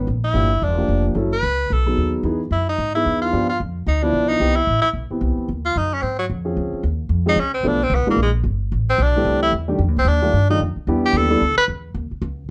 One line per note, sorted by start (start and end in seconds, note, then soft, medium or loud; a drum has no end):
0.07 0.33 A#1 medium
0.24 0.66 E4 medium
0.34 0.61 G1 medium
0.34 0.49 F3 medium
0.34 0.49 A#3 soft
0.34 0.49 D4 soft
0.34 0.49 G4 medium
0.62 0.88 E1 medium
0.62 1.06 D4 medium
0.77 1.14 F3 medium
0.77 1.13 A#3 medium
0.77 1.14 D4 soft
0.77 1.14 G4 medium
0.88 1.14 F1 medium
1.15 1.42 F#1 medium
1.15 1.30 F#3 medium
1.15 1.30 C#4 medium
1.15 1.30 E4 medium
1.15 1.31 A4 medium
1.33 1.74 B4 medium
1.43 1.69 C#2 medium
1.70 1.97 B1 medium
1.70 2.14 A4 medium
1.86 2.22 F#3 medium
1.86 2.22 B3 medium
1.86 2.22 D#4 medium
1.86 2.22 G#4 medium
1.97 2.23 D#2 medium
2.23 2.50 E2 medium
2.23 2.39 E3 medium
2.23 2.39 B3 medium
2.23 2.39 D#4 medium
2.23 2.39 G#4 medium
2.51 2.77 F#2 medium
2.51 2.67 E4 medium
2.69 2.94 D#4 medium
2.78 3.05 G#2 medium
2.95 3.31 E3 medium
2.95 3.31 B3 soft
2.95 3.31 D#4 medium
2.95 3.20 E4 medium
2.95 3.31 G#4 medium
3.06 3.32 E2 medium
3.22 3.47 F4 medium
3.33 3.59 G2 medium
3.33 3.47 F3 medium
3.33 3.47 B3 medium
3.33 3.47 D4 medium
3.33 3.47 G4 medium
3.49 3.59 F4 medium
3.60 3.86 F2 medium
3.87 4.12 D2 medium
3.87 4.05 D#4 medium
4.02 4.38 F3 medium
4.02 4.38 B3 medium
4.02 4.30 D4 medium
4.02 4.39 D4 soft
4.02 4.39 E4 medium
4.13 4.40 B1 medium
4.29 4.57 D#4 medium
4.40 4.67 C2 medium
4.40 4.55 E3 medium
4.40 4.55 B3 medium
4.40 4.55 C4 medium
4.40 4.55 G4 medium
4.56 4.81 E4 medium
4.67 4.82 A1 medium
4.82 4.89 E4 medium
4.82 muted upright bass stroke soft
4.93 5.09 B1 medium
5.10 5.47 E3 soft
5.10 5.47 B3 soft
5.10 5.47 C4 soft
5.10 5.47 G4 medium
5.10 muted upright bass stroke soft
5.21 5.36 C2 medium
5.38 muted upright bass stroke soft
5.48 5.75 D#2 medium
5.65 5.79 F4 medium
5.76 6.02 F#2 medium
5.76 5.95 D#4 medium
5.94 6.04 C#4 medium
6.02 6.29 G#2 medium
6.02 6.19 C4 medium
6.19 6.26 F#3 medium
6.30 6.56 F2 medium
6.45 6.81 F3 medium
6.45 6.81 C4 soft
6.45 6.81 C#4 medium
6.45 6.82 G#4 medium
6.57 6.72 C#2 medium
6.73 muted upright bass stroke soft
6.83 7.09 D#2 medium
7.09 7.36 F2 medium
7.26 7.36 F3 medium
7.26 7.36 G#3 medium
7.26 7.36 C4 medium
7.26 7.37 C#4 medium
7.26 7.42 D#4 medium
7.26 7.37 G#4 medium
7.36 7.63 C#2 medium
7.36 7.54 C#4 medium
7.54 7.70 C4 medium
7.63 7.89 B1 medium
7.63 7.79 F3 medium
7.63 7.79 A3 medium
7.63 7.79 B3 medium
7.63 7.79 D4 medium
7.63 7.79 A4 medium
7.68 7.85 D4 medium
7.83 7.96 C4 medium
7.90 8.05 C2 medium
7.95 8.09 B3 medium
8.06 8.17 E3 medium
8.06 8.17 G#3 medium
8.06 8.17 A#3 medium
8.06 8.18 D4 medium
8.06 8.17 F4 medium
8.06 muted upright bass stroke soft
8.11 8.19 A#3 medium
8.17 8.43 A#1 medium
8.22 8.31 G#3 medium
8.44 8.71 G1 medium
8.72 8.98 A1 medium
8.90 9.04 C4 medium
8.98 9.24 B1 medium
9.03 9.42 D4 medium
9.15 9.51 E3 medium
9.15 9.52 G3 medium
9.15 9.51 A3 medium
9.15 9.52 C4 medium
9.15 9.52 G4 medium
9.25 9.51 C2 medium
9.43 9.53 E4 loud
9.52 9.78 E2 medium
9.68 9.78 D#3 medium
9.68 9.79 G3 medium
9.68 9.78 A3 medium
9.68 9.78 D4 medium
9.68 9.79 G4 medium
9.79 9.88 F2 medium
9.88 9.96 D#2 medium
9.97 10.04 C2 medium
9.97 10.10 C4 medium
10.05 10.32 D#2 medium
10.05 10.50 D4 medium
10.22 10.32 D#3 medium
10.22 10.32 G3 medium
10.22 10.33 A3 medium
10.22 10.33 D4 medium
10.22 10.33 F4 medium
10.33 10.59 G2 medium
10.50 10.60 D#3 medium
10.50 10.60 G3 medium
10.50 10.60 A3 medium
10.50 10.60 D4 medium
10.50 10.60 D#4 medium
10.50 10.60 F4 medium
10.60 10.75 F2 medium
10.76 muted upright bass stroke soft
10.87 11.12 E2 medium
10.87 11.28 E3 medium
10.87 11.28 G3 medium
10.87 11.28 B3 medium
10.87 11.28 D4 medium
10.87 11.28 G4 medium
11.06 11.19 G4 medium
11.13 11.40 D#2 medium
11.17 11.57 A4 medium
11.30 11.40 E3 medium
11.30 11.40 G3 medium
11.30 11.40 B3 medium
11.30 11.40 D4 medium
11.30 11.41 A4 medium
11.41 11.56 D2 medium
11.57 11.64 B4 loud
11.57 muted upright bass stroke soft
11.68 11.94 E2 medium
11.94 12.10 D#2 medium
12.11 muted upright bass stroke soft
12.22 12.48 C#2 medium